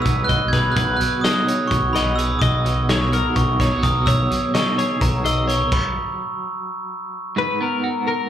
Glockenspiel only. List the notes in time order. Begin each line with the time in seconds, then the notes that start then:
0.02 E6
0.24 F#6
0.48 G#6
0.72 F#6
0.97 F#6
1.21 D#6
1.68 C#6
1.93 B5
2.16 E6
2.39 D#6
3.36 C#6
3.83 D#6
4.06 E6
4.55 C#6
5.01 A#5
5.27 E6
5.49 C#6
5.73 B5